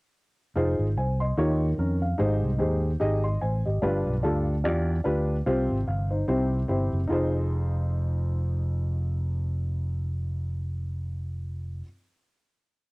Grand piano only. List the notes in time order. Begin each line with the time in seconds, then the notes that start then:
0.55 D#4 F4 G#4 C5
0.98 C5 G#5
1.20 D#5 C6
1.37 D#3 D#4 F4 G4 C#5
1.79 C#4 A#4
2.02 F5
2.18 G#2 D#4 G4 G#4 C5
2.58 D#4 G4 G#4 C5
3.00 D#4 G4 G#4 D#5
3.24 D#5 C6
3.41 C5 G#5
3.65 G4 D#5
3.82 G2 D4 F4 G4 B4
4.23 D4 F4 G4 A4
4.64 D4 F4 G4 D5
5.04 D4 F4 G4 B4
5.46 C3 C4 F4 G4 C5
5.88 F5
6.11 D#4 C5
6.28 C3 C4 E4 G4 C5
6.68 C4 E4 G4 C5
7.08 F2 D#4 F4 G#4
7.13 C5